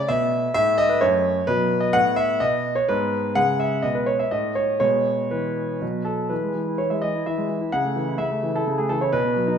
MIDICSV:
0, 0, Header, 1, 2, 480
1, 0, Start_track
1, 0, Key_signature, 4, "major"
1, 0, Tempo, 468019
1, 570, Time_signature, 3, 2, 24, 8
1, 3934, Tempo, 492611
1, 6814, Tempo, 466563
1, 9684, End_track
2, 0, Start_track
2, 0, Title_t, "Grand piano"
2, 0, Program_c, 0, 0
2, 0, Note_on_c, 0, 57, 41
2, 87, Note_on_c, 0, 76, 85
2, 97, Note_on_c, 0, 47, 59
2, 477, Note_off_c, 0, 47, 0
2, 527, Note_off_c, 0, 57, 0
2, 543, Note_off_c, 0, 76, 0
2, 558, Note_on_c, 0, 76, 107
2, 568, Note_on_c, 0, 45, 64
2, 570, Note_on_c, 0, 57, 45
2, 753, Control_c, 0, 64, 127
2, 798, Note_on_c, 0, 75, 95
2, 800, Note_off_c, 0, 76, 0
2, 914, Note_on_c, 0, 71, 64
2, 920, Note_off_c, 0, 75, 0
2, 947, Note_off_c, 0, 45, 0
2, 1035, Note_on_c, 0, 73, 82
2, 1037, Note_off_c, 0, 71, 0
2, 1043, Note_on_c, 0, 42, 51
2, 1056, Control_c, 0, 64, 0
2, 1421, Note_off_c, 0, 42, 0
2, 1474, Note_off_c, 0, 57, 0
2, 1509, Note_on_c, 0, 71, 90
2, 1511, Note_off_c, 0, 73, 0
2, 1516, Note_on_c, 0, 47, 57
2, 1516, Note_on_c, 0, 54, 42
2, 1678, Control_c, 0, 64, 127
2, 1851, Note_on_c, 0, 75, 71
2, 1869, Note_off_c, 0, 71, 0
2, 1898, Note_off_c, 0, 47, 0
2, 1960, Note_off_c, 0, 54, 0
2, 1981, Note_on_c, 0, 78, 106
2, 1982, Note_off_c, 0, 75, 0
2, 1989, Note_on_c, 0, 59, 39
2, 1990, Note_on_c, 0, 45, 56
2, 2007, Control_c, 0, 64, 0
2, 2190, Control_c, 0, 64, 127
2, 2219, Note_on_c, 0, 76, 89
2, 2229, Note_off_c, 0, 78, 0
2, 2379, Note_off_c, 0, 45, 0
2, 2464, Note_on_c, 0, 75, 86
2, 2469, Note_off_c, 0, 76, 0
2, 2469, Note_on_c, 0, 47, 47
2, 2489, Control_c, 0, 64, 0
2, 2825, Note_on_c, 0, 73, 67
2, 2832, Note_off_c, 0, 75, 0
2, 2859, Note_off_c, 0, 47, 0
2, 2917, Note_off_c, 0, 59, 0
2, 2953, Note_off_c, 0, 73, 0
2, 2959, Note_on_c, 0, 71, 82
2, 2966, Note_on_c, 0, 44, 53
2, 2966, Note_on_c, 0, 59, 37
2, 3173, Control_c, 0, 64, 127
2, 3354, Note_off_c, 0, 44, 0
2, 3417, Note_off_c, 0, 59, 0
2, 3440, Note_on_c, 0, 78, 96
2, 3444, Note_on_c, 0, 49, 52
2, 3447, Note_off_c, 0, 71, 0
2, 3450, Note_on_c, 0, 56, 42
2, 3464, Control_c, 0, 64, 0
2, 3660, Control_c, 0, 64, 127
2, 3686, Note_off_c, 0, 78, 0
2, 3689, Note_on_c, 0, 76, 63
2, 3833, Note_off_c, 0, 49, 0
2, 3922, Note_on_c, 0, 75, 72
2, 3932, Note_off_c, 0, 76, 0
2, 3932, Note_on_c, 0, 47, 42
2, 3948, Control_c, 0, 64, 0
2, 4043, Note_on_c, 0, 71, 58
2, 4044, Note_off_c, 0, 75, 0
2, 4156, Note_on_c, 0, 73, 63
2, 4164, Note_off_c, 0, 71, 0
2, 4280, Note_off_c, 0, 73, 0
2, 4282, Note_on_c, 0, 76, 60
2, 4310, Note_off_c, 0, 47, 0
2, 4366, Note_off_c, 0, 56, 0
2, 4399, Note_on_c, 0, 75, 69
2, 4403, Note_off_c, 0, 76, 0
2, 4405, Note_on_c, 0, 45, 42
2, 4407, Note_on_c, 0, 57, 30
2, 4581, Control_c, 0, 64, 127
2, 4633, Note_on_c, 0, 73, 64
2, 4644, Note_off_c, 0, 75, 0
2, 4794, Note_off_c, 0, 45, 0
2, 4857, Note_off_c, 0, 73, 0
2, 4858, Note_off_c, 0, 57, 0
2, 4872, Note_on_c, 0, 73, 75
2, 4877, Note_on_c, 0, 47, 49
2, 4881, Note_on_c, 0, 56, 32
2, 4907, Control_c, 0, 64, 0
2, 5077, Control_c, 0, 64, 127
2, 5273, Note_off_c, 0, 47, 0
2, 5369, Note_off_c, 0, 73, 0
2, 5369, Note_on_c, 0, 71, 51
2, 5381, Note_on_c, 0, 52, 37
2, 5770, Note_off_c, 0, 52, 0
2, 5822, Note_off_c, 0, 56, 0
2, 5863, Note_on_c, 0, 47, 44
2, 5864, Note_on_c, 0, 54, 32
2, 5881, Control_c, 0, 64, 0
2, 6033, Control_c, 0, 64, 127
2, 6089, Note_on_c, 0, 69, 56
2, 6102, Note_off_c, 0, 71, 0
2, 6246, Note_off_c, 0, 47, 0
2, 6308, Note_off_c, 0, 54, 0
2, 6329, Note_on_c, 0, 71, 46
2, 6334, Note_off_c, 0, 69, 0
2, 6339, Note_on_c, 0, 52, 37
2, 6356, Control_c, 0, 64, 0
2, 6462, Note_on_c, 0, 56, 32
2, 6538, Control_c, 0, 64, 127
2, 6558, Note_off_c, 0, 52, 0
2, 6573, Note_on_c, 0, 52, 33
2, 6650, Note_off_c, 0, 56, 0
2, 6695, Note_on_c, 0, 64, 33
2, 6763, Note_off_c, 0, 52, 0
2, 6804, Note_on_c, 0, 73, 53
2, 6805, Note_off_c, 0, 71, 0
2, 6812, Note_on_c, 0, 52, 33
2, 6825, Control_c, 0, 64, 0
2, 6885, Note_off_c, 0, 64, 0
2, 6928, Note_on_c, 0, 76, 47
2, 6929, Note_off_c, 0, 73, 0
2, 6934, Note_on_c, 0, 56, 33
2, 7039, Note_off_c, 0, 52, 0
2, 7045, Note_on_c, 0, 75, 65
2, 7051, Note_off_c, 0, 76, 0
2, 7054, Note_on_c, 0, 52, 32
2, 7126, Note_off_c, 0, 56, 0
2, 7180, Note_on_c, 0, 64, 33
2, 7246, Note_off_c, 0, 52, 0
2, 7289, Note_off_c, 0, 75, 0
2, 7299, Note_on_c, 0, 76, 57
2, 7305, Note_on_c, 0, 52, 38
2, 7369, Note_off_c, 0, 64, 0
2, 7417, Note_on_c, 0, 56, 35
2, 7520, Note_off_c, 0, 52, 0
2, 7535, Note_on_c, 0, 52, 34
2, 7609, Note_off_c, 0, 56, 0
2, 7654, Note_on_c, 0, 64, 38
2, 7729, Note_off_c, 0, 52, 0
2, 7774, Note_on_c, 0, 78, 76
2, 7776, Note_off_c, 0, 64, 0
2, 7780, Note_off_c, 0, 76, 0
2, 7783, Note_on_c, 0, 49, 45
2, 7898, Note_on_c, 0, 57, 36
2, 8010, Control_c, 0, 64, 127
2, 8014, Note_on_c, 0, 52, 39
2, 8091, Note_off_c, 0, 57, 0
2, 8138, Note_on_c, 0, 64, 39
2, 8210, Note_off_c, 0, 52, 0
2, 8236, Note_off_c, 0, 49, 0
2, 8243, Note_on_c, 0, 76, 71
2, 8252, Note_on_c, 0, 49, 41
2, 8259, Note_off_c, 0, 78, 0
2, 8269, Control_c, 0, 64, 0
2, 8333, Note_off_c, 0, 64, 0
2, 8381, Note_on_c, 0, 57, 39
2, 8502, Note_on_c, 0, 52, 40
2, 8575, Note_off_c, 0, 57, 0
2, 8614, Note_off_c, 0, 76, 0
2, 8627, Note_on_c, 0, 64, 42
2, 8629, Note_on_c, 0, 69, 69
2, 8695, Note_off_c, 0, 52, 0
2, 8733, Note_off_c, 0, 49, 0
2, 8749, Note_on_c, 0, 49, 44
2, 8817, Note_off_c, 0, 64, 0
2, 8860, Note_on_c, 0, 68, 59
2, 8865, Note_off_c, 0, 69, 0
2, 8866, Note_on_c, 0, 57, 42
2, 8976, Note_on_c, 0, 69, 74
2, 8980, Note_off_c, 0, 68, 0
2, 8985, Note_on_c, 0, 52, 41
2, 9054, Note_off_c, 0, 57, 0
2, 9097, Note_off_c, 0, 69, 0
2, 9099, Note_on_c, 0, 73, 60
2, 9111, Note_on_c, 0, 64, 45
2, 9172, Note_off_c, 0, 52, 0
2, 9206, Note_off_c, 0, 49, 0
2, 9215, Note_on_c, 0, 71, 82
2, 9217, Note_off_c, 0, 73, 0
2, 9220, Note_on_c, 0, 47, 58
2, 9223, Note_off_c, 0, 64, 0
2, 9337, Note_on_c, 0, 59, 42
2, 9412, Control_c, 0, 64, 127
2, 9458, Note_on_c, 0, 54, 41
2, 9525, Note_off_c, 0, 59, 0
2, 9570, Note_on_c, 0, 63, 46
2, 9646, Note_off_c, 0, 54, 0
2, 9674, Note_off_c, 0, 47, 0
2, 9684, Note_off_c, 0, 63, 0
2, 9684, Note_off_c, 0, 71, 0
2, 9684, End_track
0, 0, End_of_file